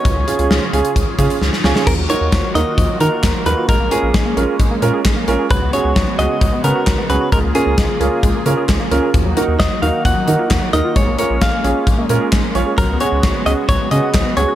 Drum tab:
CC |----------------|x---------------|----------------|----------------|
HH |x-xx--xxx-xx----|--x-x-x-x-x-x-x-|x-x-x-x-x-x-x-x-|x-x-x-x-x-x-x-x-|
CP |----------------|------------x---|------------x---|------------x---|
SD |----o-------oooo|----o-------o---|----o-------o---|----o-------o---|
BD |o-------o-o-----|o---o---o---o---|o---o---o---o---|o---o---o---o---|

CC |----------------|----------------|----------------|----------------|
HH |x-x-x-x-x-x-x-x-|x-x-x-x-x-x-x-x-|x-x-x-x-x-x-x-x-|x-x-x-x-x-x-x-x-|
CP |------------x---|------------x---|------------x---|------------x---|
SD |----o-------o---|----o-------o---|----o-------o---|----o-------o---|
BD |o---o---o---o---|o---o---o---o---|o---o---o---o---|o---o---o---o---|